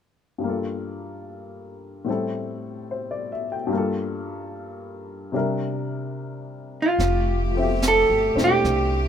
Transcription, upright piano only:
0, 0, Header, 1, 2, 480
1, 0, Start_track
1, 0, Key_signature, -1, "major"
1, 0, Tempo, 820793
1, 253, Time_signature, 4, 2, 24, 8
1, 5311, End_track
2, 0, Start_track
2, 0, Title_t, "Upright piano"
2, 0, Program_c, 0, 0
2, 224, Note_on_c, 0, 43, 32
2, 240, Note_on_c, 0, 55, 29
2, 257, Note_on_c, 0, 58, 28
2, 274, Note_on_c, 0, 65, 29
2, 289, Note_on_c, 0, 69, 34
2, 359, Control_c, 0, 64, 127
2, 1196, Note_off_c, 0, 55, 0
2, 1197, Note_on_c, 0, 45, 35
2, 1199, Note_off_c, 0, 43, 0
2, 1205, Note_on_c, 0, 55, 32
2, 1215, Note_on_c, 0, 60, 33
2, 1216, Note_off_c, 0, 58, 0
2, 1221, Note_off_c, 0, 69, 0
2, 1222, Control_c, 0, 64, 0
2, 1222, Note_on_c, 0, 64, 34
2, 1224, Note_off_c, 0, 65, 0
2, 1229, Note_on_c, 0, 69, 42
2, 1318, Control_c, 0, 64, 127
2, 1702, Note_on_c, 0, 72, 32
2, 1818, Note_on_c, 0, 74, 36
2, 1927, Note_off_c, 0, 72, 0
2, 1942, Note_on_c, 0, 76, 37
2, 2023, Note_off_c, 0, 74, 0
2, 2058, Note_on_c, 0, 79, 38
2, 2082, Note_off_c, 0, 76, 0
2, 2145, Note_on_c, 0, 43, 41
2, 2150, Note_off_c, 0, 55, 0
2, 2159, Note_on_c, 0, 55, 40
2, 2160, Note_off_c, 0, 45, 0
2, 2169, Note_off_c, 0, 60, 0
2, 2173, Note_off_c, 0, 64, 0
2, 2175, Control_c, 0, 64, 0
2, 2176, Note_off_c, 0, 69, 0
2, 2179, Note_on_c, 0, 58, 38
2, 2194, Note_on_c, 0, 65, 37
2, 2207, Note_on_c, 0, 69, 48
2, 2220, Note_off_c, 0, 79, 0
2, 2282, Control_c, 0, 64, 127
2, 3111, Note_off_c, 0, 43, 0
2, 3111, Note_off_c, 0, 55, 0
2, 3111, Note_on_c, 0, 48, 36
2, 3119, Note_on_c, 0, 55, 34
2, 3124, Note_on_c, 0, 62, 33
2, 3128, Note_off_c, 0, 58, 0
2, 3130, Note_on_c, 0, 76, 34
2, 3131, Control_c, 0, 64, 0
2, 3136, Note_off_c, 0, 65, 0
2, 3138, Note_on_c, 0, 70, 42
2, 3142, Note_off_c, 0, 69, 0
2, 3249, Control_c, 0, 64, 127
2, 4084, Note_off_c, 0, 48, 0
2, 4088, Note_off_c, 0, 55, 0
2, 4090, Note_off_c, 0, 62, 0
2, 4093, Note_off_c, 0, 76, 0
2, 4096, Control_c, 0, 64, 0
2, 4097, Note_off_c, 0, 70, 0
2, 4186, Control_c, 0, 64, 127
2, 4392, Note_on_c, 0, 53, 38
2, 4411, Note_on_c, 0, 57, 36
2, 4425, Note_on_c, 0, 60, 37
2, 4439, Note_on_c, 0, 76, 35
2, 4457, Note_on_c, 0, 67, 43
2, 4876, Note_off_c, 0, 60, 0
2, 4885, Note_on_c, 0, 60, 34
2, 4886, Note_on_c, 0, 62, 31
2, 4893, Note_on_c, 0, 64, 29
2, 4901, Note_on_c, 0, 69, 36
2, 5311, Note_off_c, 0, 53, 0
2, 5311, Note_off_c, 0, 57, 0
2, 5311, Note_off_c, 0, 60, 0
2, 5311, Note_off_c, 0, 62, 0
2, 5311, Note_off_c, 0, 64, 0
2, 5311, Note_off_c, 0, 67, 0
2, 5311, Note_off_c, 0, 69, 0
2, 5311, Note_off_c, 0, 76, 0
2, 5311, End_track
0, 0, End_of_file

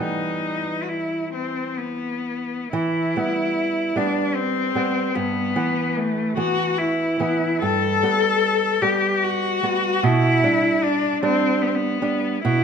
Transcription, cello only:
0, 0, Header, 1, 2, 480
1, 0, Start_track
1, 0, Key_signature, 1, "minor"
1, 0, Tempo, 884956
1, 7, Time_signature, 3, 2, 24, 8
1, 966, Tempo, 950872
1, 1446, Tempo, 832178
1, 1926, Tempo, 800000
1, 3366, Tempo, 836820
1, 4326, Tempo, 794702
1, 6726, Tempo, 825309
1, 7324, End_track
2, 0, Start_track
2, 0, Title_t, "Cello"
2, 0, Program_c, 0, 42
2, 9, Note_on_c, 0, 63, 43
2, 448, Note_on_c, 0, 66, 23
2, 456, Note_off_c, 0, 63, 0
2, 480, Note_on_c, 0, 64, 34
2, 488, Note_off_c, 0, 66, 0
2, 720, Note_off_c, 0, 64, 0
2, 725, Note_on_c, 0, 60, 40
2, 963, Note_on_c, 0, 59, 39
2, 970, Note_off_c, 0, 60, 0
2, 1440, Note_off_c, 0, 59, 0
2, 1443, Note_on_c, 0, 64, 67
2, 2166, Note_on_c, 0, 62, 55
2, 2175, Note_off_c, 0, 64, 0
2, 2398, Note_on_c, 0, 60, 60
2, 2407, Note_off_c, 0, 62, 0
2, 2878, Note_on_c, 0, 59, 59
2, 2887, Note_off_c, 0, 60, 0
2, 3366, Note_on_c, 0, 57, 57
2, 3375, Note_off_c, 0, 59, 0
2, 3595, Note_off_c, 0, 57, 0
2, 3598, Note_on_c, 0, 66, 64
2, 3835, Note_on_c, 0, 64, 55
2, 3843, Note_off_c, 0, 66, 0
2, 4313, Note_off_c, 0, 64, 0
2, 4317, Note_on_c, 0, 69, 75
2, 5037, Note_on_c, 0, 67, 60
2, 5046, Note_off_c, 0, 69, 0
2, 5289, Note_on_c, 0, 66, 64
2, 5298, Note_off_c, 0, 67, 0
2, 5776, Note_on_c, 0, 64, 73
2, 5785, Note_off_c, 0, 66, 0
2, 6255, Note_on_c, 0, 62, 67
2, 6264, Note_off_c, 0, 64, 0
2, 6490, Note_off_c, 0, 62, 0
2, 6501, Note_on_c, 0, 60, 68
2, 6727, Note_on_c, 0, 59, 54
2, 6736, Note_off_c, 0, 60, 0
2, 6763, Note_on_c, 0, 60, 47
2, 6772, Note_off_c, 0, 59, 0
2, 6803, Note_on_c, 0, 59, 58
2, 6812, Note_off_c, 0, 60, 0
2, 7200, Note_off_c, 0, 59, 0
2, 7203, Note_on_c, 0, 64, 85
2, 7324, Note_off_c, 0, 64, 0
2, 7324, End_track
0, 0, End_of_file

